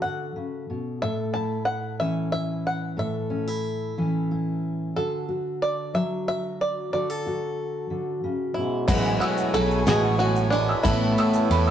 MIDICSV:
0, 0, Header, 1, 10, 480
1, 0, Start_track
1, 0, Key_signature, 3, "major"
1, 0, Tempo, 655738
1, 745, Time_signature, 6, 3, 24, 8
1, 8568, End_track
2, 0, Start_track
2, 0, Title_t, "Upright piano"
2, 0, Program_c, 0, 0
2, 6503, Note_on_c, 0, 78, 86
2, 6628, Note_on_c, 0, 80, 69
2, 6742, Note_on_c, 0, 88, 74
2, 6859, Note_off_c, 0, 78, 0
2, 6870, Note_on_c, 0, 78, 65
2, 6978, Note_off_c, 0, 80, 0
2, 6989, Note_on_c, 0, 80, 72
2, 7217, Note_off_c, 0, 78, 0
2, 7225, Note_off_c, 0, 88, 0
2, 7228, Note_on_c, 0, 78, 85
2, 7340, Note_off_c, 0, 80, 0
2, 7351, Note_on_c, 0, 80, 70
2, 7574, Note_off_c, 0, 78, 0
2, 7585, Note_on_c, 0, 78, 70
2, 7692, Note_off_c, 0, 80, 0
2, 7703, Note_on_c, 0, 80, 77
2, 7826, Note_on_c, 0, 88, 71
2, 7943, Note_on_c, 0, 81, 84
2, 7945, Note_off_c, 0, 80, 0
2, 7946, Note_off_c, 0, 78, 0
2, 7947, Note_off_c, 0, 88, 0
2, 8188, Note_on_c, 0, 88, 79
2, 8295, Note_off_c, 0, 81, 0
2, 8306, Note_on_c, 0, 81, 70
2, 8423, Note_on_c, 0, 83, 82
2, 8534, Note_off_c, 0, 88, 0
2, 8545, Note_on_c, 0, 88, 80
2, 8568, Note_off_c, 0, 81, 0
2, 8568, Note_off_c, 0, 83, 0
2, 8568, Note_off_c, 0, 88, 0
2, 8568, End_track
3, 0, Start_track
3, 0, Title_t, "Five-string banjo"
3, 0, Program_c, 1, 105
3, 14, Note_on_c, 1, 78, 76
3, 530, Note_off_c, 1, 78, 0
3, 747, Note_on_c, 1, 76, 82
3, 975, Note_off_c, 1, 76, 0
3, 978, Note_on_c, 1, 81, 77
3, 1207, Note_off_c, 1, 81, 0
3, 1209, Note_on_c, 1, 78, 77
3, 1441, Note_off_c, 1, 78, 0
3, 1462, Note_on_c, 1, 76, 78
3, 1691, Note_off_c, 1, 76, 0
3, 1700, Note_on_c, 1, 76, 74
3, 1949, Note_off_c, 1, 76, 0
3, 1952, Note_on_c, 1, 78, 76
3, 2187, Note_off_c, 1, 78, 0
3, 2190, Note_on_c, 1, 76, 76
3, 3362, Note_off_c, 1, 76, 0
3, 3634, Note_on_c, 1, 69, 72
3, 4116, Note_on_c, 1, 74, 86
3, 4127, Note_off_c, 1, 69, 0
3, 4351, Note_off_c, 1, 74, 0
3, 4354, Note_on_c, 1, 76, 87
3, 4576, Note_off_c, 1, 76, 0
3, 4598, Note_on_c, 1, 76, 81
3, 4837, Note_off_c, 1, 76, 0
3, 4840, Note_on_c, 1, 74, 74
3, 5065, Note_off_c, 1, 74, 0
3, 5073, Note_on_c, 1, 74, 77
3, 6003, Note_off_c, 1, 74, 0
3, 6254, Note_on_c, 1, 64, 76
3, 6489, Note_off_c, 1, 64, 0
3, 6497, Note_on_c, 1, 64, 90
3, 6736, Note_on_c, 1, 66, 86
3, 6751, Note_off_c, 1, 64, 0
3, 6979, Note_off_c, 1, 66, 0
3, 6982, Note_on_c, 1, 69, 98
3, 7229, Note_off_c, 1, 69, 0
3, 7232, Note_on_c, 1, 68, 98
3, 7456, Note_off_c, 1, 68, 0
3, 7459, Note_on_c, 1, 66, 84
3, 7686, Note_off_c, 1, 66, 0
3, 7689, Note_on_c, 1, 62, 90
3, 7930, Note_on_c, 1, 64, 98
3, 7945, Note_off_c, 1, 62, 0
3, 8568, Note_off_c, 1, 64, 0
3, 8568, End_track
4, 0, Start_track
4, 0, Title_t, "String section"
4, 0, Program_c, 2, 48
4, 6514, Note_on_c, 2, 64, 73
4, 6515, Note_on_c, 2, 80, 89
4, 6516, Note_on_c, 2, 66, 72
4, 7935, Note_off_c, 2, 80, 0
4, 7936, Note_off_c, 2, 66, 0
4, 7947, Note_on_c, 2, 71, 91
4, 8568, Note_off_c, 2, 64, 0
4, 8568, Note_off_c, 2, 71, 0
4, 8568, End_track
5, 0, Start_track
5, 0, Title_t, "Upright piano"
5, 0, Program_c, 3, 0
5, 6507, Note_on_c, 3, 56, 73
5, 6514, Note_on_c, 3, 64, 70
5, 6515, Note_on_c, 3, 47, 58
5, 6515, Note_on_c, 3, 66, 70
5, 6518, Note_on_c, 3, 33, 60
5, 6520, Note_on_c, 3, 71, 82
5, 6644, Control_c, 3, 64, 127
5, 6958, Note_off_c, 3, 56, 0
5, 6962, Note_off_c, 3, 64, 0
5, 6962, Note_off_c, 3, 66, 0
5, 6965, Note_off_c, 3, 71, 0
5, 7224, Note_on_c, 3, 56, 64
5, 7233, Note_on_c, 3, 64, 57
5, 7234, Note_on_c, 3, 66, 58
5, 7241, Note_on_c, 3, 71, 69
5, 7676, Note_off_c, 3, 56, 0
5, 7680, Note_off_c, 3, 64, 0
5, 7681, Note_off_c, 3, 66, 0
5, 7684, Note_off_c, 3, 71, 0
5, 7921, Note_off_c, 3, 47, 0
5, 7922, Note_off_c, 3, 33, 0
5, 7944, Note_on_c, 3, 57, 80
5, 7950, Note_on_c, 3, 59, 74
5, 7955, Control_c, 3, 64, 0
5, 7958, Note_on_c, 3, 45, 63
5, 7959, Note_on_c, 3, 33, 63
5, 7959, Note_on_c, 3, 64, 74
5, 7964, Note_on_c, 3, 71, 84
5, 8092, Control_c, 3, 64, 127
5, 8395, Note_off_c, 3, 57, 0
5, 8398, Note_off_c, 3, 59, 0
5, 8402, Note_off_c, 3, 64, 0
5, 8405, Note_off_c, 3, 71, 0
5, 8568, Note_off_c, 3, 33, 0
5, 8568, Note_off_c, 3, 45, 0
5, 8568, End_track
6, 0, Start_track
6, 0, Title_t, "Steel-string acoustic guitar"
6, 0, Program_c, 4, 25
6, 0, Note_on_c, 4, 57, 47
6, 0, Note_on_c, 4, 66, 52
6, 0, Note_on_c, 4, 69, 50
6, 28, Note_on_c, 4, 50, 52
6, 260, Note_off_c, 4, 50, 0
6, 262, Note_on_c, 4, 49, 48
6, 504, Note_off_c, 4, 49, 0
6, 511, Note_on_c, 4, 47, 42
6, 719, Note_off_c, 4, 66, 0
6, 748, Note_off_c, 4, 47, 0
6, 748, Note_on_c, 4, 45, 56
6, 750, Note_off_c, 4, 69, 0
6, 753, Note_on_c, 4, 69, 50
6, 989, Note_on_c, 4, 64, 52
6, 1147, Note_off_c, 4, 57, 0
6, 1464, Note_on_c, 4, 52, 52
6, 1469, Note_on_c, 4, 61, 51
6, 1697, Note_off_c, 4, 64, 0
6, 1706, Note_on_c, 4, 64, 50
6, 2159, Note_off_c, 4, 61, 0
6, 2159, Note_off_c, 4, 64, 0
6, 2161, Note_off_c, 4, 45, 0
6, 2172, Note_on_c, 4, 45, 59
6, 2176, Note_off_c, 4, 69, 0
6, 2179, Note_on_c, 4, 69, 52
6, 2416, Note_on_c, 4, 61, 52
6, 2543, Note_off_c, 4, 61, 0
6, 2543, Note_on_c, 4, 64, 42
6, 2901, Note_off_c, 4, 52, 0
6, 2910, Note_on_c, 4, 52, 59
6, 2915, Note_on_c, 4, 61, 51
6, 3147, Note_off_c, 4, 64, 0
6, 3157, Note_on_c, 4, 64, 48
6, 3594, Note_off_c, 4, 45, 0
6, 3605, Note_off_c, 4, 61, 0
6, 3605, Note_off_c, 4, 64, 0
6, 3631, Note_off_c, 4, 52, 0
6, 3634, Note_on_c, 4, 50, 56
6, 3637, Note_on_c, 4, 66, 47
6, 3866, Note_off_c, 4, 66, 0
6, 3869, Note_on_c, 4, 66, 53
6, 4346, Note_on_c, 4, 54, 56
6, 4594, Note_off_c, 4, 66, 0
6, 4597, Note_on_c, 4, 66, 48
6, 4741, Note_off_c, 4, 69, 0
6, 5044, Note_off_c, 4, 50, 0
6, 5073, Note_on_c, 4, 50, 55
6, 5077, Note_off_c, 4, 66, 0
6, 5077, Note_on_c, 4, 66, 54
6, 5195, Note_off_c, 4, 66, 0
6, 5195, Note_on_c, 4, 69, 47
6, 5318, Note_on_c, 4, 66, 57
6, 5776, Note_off_c, 4, 50, 0
6, 5784, Note_on_c, 4, 50, 57
6, 6027, Note_off_c, 4, 50, 0
6, 6030, Note_on_c, 4, 49, 53
6, 6268, Note_off_c, 4, 49, 0
6, 6271, Note_on_c, 4, 47, 50
6, 6485, Note_off_c, 4, 66, 0
6, 6511, Note_off_c, 4, 47, 0
6, 6512, Note_off_c, 4, 69, 0
6, 6878, Note_off_c, 4, 54, 0
6, 8568, End_track
7, 0, Start_track
7, 0, Title_t, "Twelve-string acoustic guitar"
7, 0, Program_c, 5, 25
7, 6500, Note_on_c, 5, 54, 74
7, 6503, Note_on_c, 5, 56, 85
7, 6508, Note_on_c, 5, 59, 86
7, 6510, Note_on_c, 5, 64, 95
7, 6978, Note_off_c, 5, 54, 0
7, 6986, Note_off_c, 5, 56, 0
7, 6987, Note_on_c, 5, 54, 57
7, 6990, Note_off_c, 5, 59, 0
7, 6993, Note_on_c, 5, 59, 62
7, 6994, Note_off_c, 5, 64, 0
7, 6997, Note_on_c, 5, 64, 58
7, 7219, Note_off_c, 5, 59, 0
7, 7220, Note_off_c, 5, 64, 0
7, 7228, Note_off_c, 5, 54, 0
7, 7228, Note_on_c, 5, 59, 62
7, 7229, Note_on_c, 5, 64, 60
7, 7231, Note_on_c, 5, 56, 59
7, 7237, Note_on_c, 5, 54, 61
7, 7238, Note_on_c, 5, 45, 59
7, 7700, Note_off_c, 5, 64, 0
7, 7703, Note_on_c, 5, 64, 59
7, 7706, Note_off_c, 5, 59, 0
7, 7709, Note_off_c, 5, 56, 0
7, 7712, Note_off_c, 5, 54, 0
7, 7713, Note_off_c, 5, 45, 0
7, 7714, Note_on_c, 5, 59, 46
7, 7721, Note_on_c, 5, 56, 42
7, 7939, Note_off_c, 5, 59, 0
7, 7944, Note_on_c, 5, 52, 82
7, 7945, Note_off_c, 5, 56, 0
7, 7945, Note_off_c, 5, 64, 0
7, 7945, Note_on_c, 5, 45, 89
7, 7947, Note_on_c, 5, 57, 91
7, 7948, Note_on_c, 5, 59, 87
7, 7954, Note_on_c, 5, 64, 92
7, 8425, Note_off_c, 5, 45, 0
7, 8426, Note_off_c, 5, 59, 0
7, 8427, Note_off_c, 5, 52, 0
7, 8430, Note_on_c, 5, 52, 53
7, 8438, Note_off_c, 5, 57, 0
7, 8441, Note_on_c, 5, 57, 54
7, 8444, Note_off_c, 5, 64, 0
7, 8444, Note_on_c, 5, 59, 64
7, 8447, Note_on_c, 5, 64, 62
7, 8568, Note_off_c, 5, 52, 0
7, 8568, Note_off_c, 5, 57, 0
7, 8568, Note_off_c, 5, 59, 0
7, 8568, Note_off_c, 5, 64, 0
7, 8568, End_track
8, 0, Start_track
8, 0, Title_t, "French horn"
8, 0, Program_c, 6, 60
8, 6266, Note_on_c, 6, 44, 61
8, 6491, Note_off_c, 6, 44, 0
8, 6505, Note_on_c, 6, 44, 81
8, 6730, Note_off_c, 6, 44, 0
8, 6749, Note_on_c, 6, 45, 75
8, 6973, Note_off_c, 6, 45, 0
8, 6988, Note_on_c, 6, 49, 82
8, 7212, Note_off_c, 6, 49, 0
8, 7221, Note_on_c, 6, 47, 89
8, 7448, Note_off_c, 6, 47, 0
8, 7454, Note_on_c, 6, 45, 80
8, 7684, Note_off_c, 6, 45, 0
8, 7689, Note_on_c, 6, 42, 74
8, 7921, Note_off_c, 6, 42, 0
8, 7933, Note_on_c, 6, 45, 97
8, 8568, Note_off_c, 6, 45, 0
8, 8568, End_track
9, 0, Start_track
9, 0, Title_t, "Picked electric bass"
9, 0, Program_c, 7, 34
9, 6504, Note_on_c, 7, 33, 76
9, 6715, Note_off_c, 7, 33, 0
9, 6982, Note_on_c, 7, 35, 77
9, 7194, Note_off_c, 7, 35, 0
9, 7218, Note_on_c, 7, 33, 87
9, 7847, Note_off_c, 7, 33, 0
9, 7940, Note_on_c, 7, 33, 82
9, 8151, Note_off_c, 7, 33, 0
9, 8417, Note_on_c, 7, 40, 77
9, 8568, Note_off_c, 7, 40, 0
9, 8568, End_track
10, 0, Start_track
10, 0, Title_t, "Drums"
10, 6504, Note_on_c, 9, 36, 98
10, 6506, Note_on_c, 9, 82, 103
10, 6507, Note_on_c, 9, 49, 97
10, 6577, Note_off_c, 9, 36, 0
10, 6579, Note_off_c, 9, 82, 0
10, 6580, Note_off_c, 9, 49, 0
10, 6743, Note_on_c, 9, 51, 62
10, 6817, Note_off_c, 9, 51, 0
10, 6861, Note_on_c, 9, 82, 84
10, 6934, Note_off_c, 9, 82, 0
10, 6984, Note_on_c, 9, 51, 62
10, 7058, Note_off_c, 9, 51, 0
10, 7107, Note_on_c, 9, 82, 31
10, 7180, Note_off_c, 9, 82, 0
10, 7221, Note_on_c, 9, 82, 91
10, 7224, Note_on_c, 9, 38, 103
10, 7224, Note_on_c, 9, 51, 73
10, 7294, Note_off_c, 9, 82, 0
10, 7297, Note_off_c, 9, 38, 0
10, 7297, Note_off_c, 9, 51, 0
10, 7465, Note_on_c, 9, 51, 60
10, 7538, Note_off_c, 9, 51, 0
10, 7582, Note_on_c, 9, 82, 77
10, 7655, Note_off_c, 9, 82, 0
10, 7703, Note_on_c, 9, 51, 61
10, 7777, Note_off_c, 9, 51, 0
10, 7939, Note_on_c, 9, 82, 104
10, 7942, Note_on_c, 9, 36, 103
10, 7945, Note_on_c, 9, 51, 81
10, 8012, Note_off_c, 9, 82, 0
10, 8015, Note_off_c, 9, 36, 0
10, 8018, Note_off_c, 9, 51, 0
10, 8184, Note_on_c, 9, 51, 67
10, 8257, Note_off_c, 9, 51, 0
10, 8297, Note_on_c, 9, 82, 83
10, 8370, Note_off_c, 9, 82, 0
10, 8423, Note_on_c, 9, 51, 70
10, 8496, Note_off_c, 9, 51, 0
10, 8540, Note_on_c, 9, 82, 32
10, 8568, Note_off_c, 9, 82, 0
10, 8568, End_track
0, 0, End_of_file